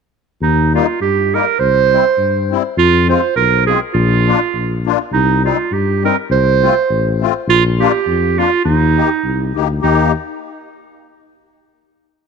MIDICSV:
0, 0, Header, 1, 4, 480
1, 0, Start_track
1, 0, Key_signature, -3, "major"
1, 0, Tempo, 590551
1, 336, Time_signature, 2, 2, 24, 8
1, 4654, Tempo, 585366
1, 10023, End_track
2, 0, Start_track
2, 0, Title_t, "Clarinet"
2, 0, Program_c, 0, 71
2, 348, Note_on_c, 0, 63, 83
2, 587, Note_off_c, 0, 63, 0
2, 606, Note_on_c, 0, 65, 59
2, 808, Note_off_c, 0, 65, 0
2, 823, Note_on_c, 0, 67, 80
2, 1096, Note_on_c, 0, 70, 82
2, 1108, Note_off_c, 0, 67, 0
2, 1294, Note_on_c, 0, 72, 108
2, 1306, Note_off_c, 0, 70, 0
2, 2032, Note_off_c, 0, 72, 0
2, 2263, Note_on_c, 0, 65, 99
2, 2498, Note_off_c, 0, 65, 0
2, 2513, Note_on_c, 0, 72, 74
2, 2715, Note_off_c, 0, 72, 0
2, 2732, Note_on_c, 0, 70, 88
2, 2973, Note_off_c, 0, 70, 0
2, 2979, Note_on_c, 0, 68, 80
2, 3081, Note_off_c, 0, 68, 0
2, 3201, Note_on_c, 0, 65, 81
2, 3918, Note_off_c, 0, 65, 0
2, 4170, Note_on_c, 0, 63, 88
2, 4415, Note_off_c, 0, 63, 0
2, 4429, Note_on_c, 0, 65, 58
2, 4657, Note_on_c, 0, 67, 70
2, 4669, Note_off_c, 0, 65, 0
2, 4917, Note_off_c, 0, 67, 0
2, 4922, Note_on_c, 0, 70, 70
2, 5019, Note_off_c, 0, 70, 0
2, 5139, Note_on_c, 0, 72, 99
2, 5841, Note_off_c, 0, 72, 0
2, 6106, Note_on_c, 0, 65, 105
2, 6220, Note_off_c, 0, 65, 0
2, 6355, Note_on_c, 0, 67, 72
2, 6831, Note_on_c, 0, 65, 85
2, 6844, Note_off_c, 0, 67, 0
2, 7047, Note_off_c, 0, 65, 0
2, 7052, Note_on_c, 0, 63, 82
2, 7767, Note_off_c, 0, 63, 0
2, 8021, Note_on_c, 0, 63, 73
2, 8264, Note_off_c, 0, 63, 0
2, 10023, End_track
3, 0, Start_track
3, 0, Title_t, "Accordion"
3, 0, Program_c, 1, 21
3, 602, Note_on_c, 1, 55, 53
3, 606, Note_on_c, 1, 58, 52
3, 612, Note_on_c, 1, 63, 68
3, 700, Note_off_c, 1, 55, 0
3, 702, Note_off_c, 1, 58, 0
3, 705, Note_off_c, 1, 63, 0
3, 1078, Note_on_c, 1, 55, 39
3, 1083, Note_on_c, 1, 58, 32
3, 1089, Note_on_c, 1, 63, 51
3, 1179, Note_off_c, 1, 55, 0
3, 1181, Note_off_c, 1, 58, 0
3, 1184, Note_off_c, 1, 63, 0
3, 1558, Note_on_c, 1, 55, 59
3, 1569, Note_on_c, 1, 60, 45
3, 1570, Note_on_c, 1, 64, 61
3, 1656, Note_off_c, 1, 55, 0
3, 1662, Note_off_c, 1, 60, 0
3, 1663, Note_off_c, 1, 64, 0
3, 2039, Note_on_c, 1, 60, 50
3, 2040, Note_on_c, 1, 55, 54
3, 2045, Note_on_c, 1, 64, 62
3, 2135, Note_off_c, 1, 60, 0
3, 2136, Note_off_c, 1, 55, 0
3, 2138, Note_off_c, 1, 64, 0
3, 2502, Note_on_c, 1, 56, 59
3, 2508, Note_on_c, 1, 60, 51
3, 2514, Note_on_c, 1, 65, 59
3, 2605, Note_off_c, 1, 56, 0
3, 2607, Note_off_c, 1, 60, 0
3, 2610, Note_off_c, 1, 65, 0
3, 2986, Note_on_c, 1, 56, 44
3, 2991, Note_on_c, 1, 60, 48
3, 2995, Note_on_c, 1, 65, 40
3, 3087, Note_off_c, 1, 56, 0
3, 3089, Note_off_c, 1, 60, 0
3, 3091, Note_off_c, 1, 65, 0
3, 3469, Note_on_c, 1, 58, 48
3, 3478, Note_on_c, 1, 62, 45
3, 3481, Note_on_c, 1, 65, 61
3, 3570, Note_off_c, 1, 58, 0
3, 3574, Note_off_c, 1, 62, 0
3, 3576, Note_off_c, 1, 65, 0
3, 3946, Note_on_c, 1, 58, 53
3, 3955, Note_on_c, 1, 62, 55
3, 3955, Note_on_c, 1, 65, 55
3, 4049, Note_off_c, 1, 58, 0
3, 4054, Note_off_c, 1, 62, 0
3, 4054, Note_off_c, 1, 65, 0
3, 4420, Note_on_c, 1, 55, 56
3, 4428, Note_on_c, 1, 60, 41
3, 4431, Note_on_c, 1, 63, 57
3, 4526, Note_off_c, 1, 55, 0
3, 4530, Note_off_c, 1, 60, 0
3, 4532, Note_off_c, 1, 63, 0
3, 4899, Note_on_c, 1, 55, 37
3, 4907, Note_on_c, 1, 60, 32
3, 4911, Note_on_c, 1, 63, 51
3, 5006, Note_off_c, 1, 55, 0
3, 5010, Note_off_c, 1, 60, 0
3, 5012, Note_off_c, 1, 63, 0
3, 5382, Note_on_c, 1, 57, 60
3, 5391, Note_on_c, 1, 60, 49
3, 5393, Note_on_c, 1, 65, 63
3, 5486, Note_off_c, 1, 57, 0
3, 5491, Note_off_c, 1, 60, 0
3, 5491, Note_off_c, 1, 65, 0
3, 5868, Note_on_c, 1, 57, 58
3, 5875, Note_on_c, 1, 60, 49
3, 5884, Note_on_c, 1, 65, 53
3, 5969, Note_off_c, 1, 57, 0
3, 5972, Note_off_c, 1, 60, 0
3, 5976, Note_off_c, 1, 65, 0
3, 6353, Note_on_c, 1, 58, 52
3, 6357, Note_on_c, 1, 62, 50
3, 6358, Note_on_c, 1, 65, 73
3, 6452, Note_off_c, 1, 58, 0
3, 6454, Note_off_c, 1, 62, 0
3, 6454, Note_off_c, 1, 65, 0
3, 6826, Note_on_c, 1, 58, 39
3, 6827, Note_on_c, 1, 62, 42
3, 6833, Note_on_c, 1, 65, 48
3, 6929, Note_off_c, 1, 58, 0
3, 6930, Note_off_c, 1, 62, 0
3, 6933, Note_off_c, 1, 65, 0
3, 7309, Note_on_c, 1, 58, 54
3, 7315, Note_on_c, 1, 63, 52
3, 7318, Note_on_c, 1, 67, 53
3, 7412, Note_off_c, 1, 58, 0
3, 7416, Note_off_c, 1, 63, 0
3, 7417, Note_off_c, 1, 67, 0
3, 7790, Note_on_c, 1, 58, 46
3, 7792, Note_on_c, 1, 63, 45
3, 7798, Note_on_c, 1, 67, 50
3, 7895, Note_off_c, 1, 58, 0
3, 7896, Note_off_c, 1, 63, 0
3, 7899, Note_off_c, 1, 67, 0
3, 8010, Note_on_c, 1, 58, 60
3, 8010, Note_on_c, 1, 67, 64
3, 8016, Note_on_c, 1, 63, 53
3, 8258, Note_off_c, 1, 58, 0
3, 8258, Note_off_c, 1, 67, 0
3, 8261, Note_off_c, 1, 63, 0
3, 10023, End_track
4, 0, Start_track
4, 0, Title_t, "Tuba"
4, 0, Program_c, 2, 58
4, 331, Note_on_c, 2, 39, 85
4, 647, Note_off_c, 2, 39, 0
4, 817, Note_on_c, 2, 43, 53
4, 1130, Note_off_c, 2, 43, 0
4, 1296, Note_on_c, 2, 36, 81
4, 1607, Note_off_c, 2, 36, 0
4, 1766, Note_on_c, 2, 43, 54
4, 2078, Note_off_c, 2, 43, 0
4, 2251, Note_on_c, 2, 41, 95
4, 2561, Note_off_c, 2, 41, 0
4, 2729, Note_on_c, 2, 35, 65
4, 3041, Note_off_c, 2, 35, 0
4, 3200, Note_on_c, 2, 34, 98
4, 3517, Note_off_c, 2, 34, 0
4, 3688, Note_on_c, 2, 34, 54
4, 4003, Note_off_c, 2, 34, 0
4, 4161, Note_on_c, 2, 36, 85
4, 4477, Note_off_c, 2, 36, 0
4, 4643, Note_on_c, 2, 43, 55
4, 4959, Note_off_c, 2, 43, 0
4, 5124, Note_on_c, 2, 36, 87
4, 5438, Note_off_c, 2, 36, 0
4, 5610, Note_on_c, 2, 33, 68
4, 5923, Note_off_c, 2, 33, 0
4, 6085, Note_on_c, 2, 34, 91
4, 6399, Note_off_c, 2, 34, 0
4, 6569, Note_on_c, 2, 41, 69
4, 6883, Note_off_c, 2, 41, 0
4, 7051, Note_on_c, 2, 39, 94
4, 7367, Note_off_c, 2, 39, 0
4, 7533, Note_on_c, 2, 36, 57
4, 7772, Note_off_c, 2, 36, 0
4, 7792, Note_on_c, 2, 38, 60
4, 7995, Note_off_c, 2, 38, 0
4, 8018, Note_on_c, 2, 39, 83
4, 8263, Note_off_c, 2, 39, 0
4, 10023, End_track
0, 0, End_of_file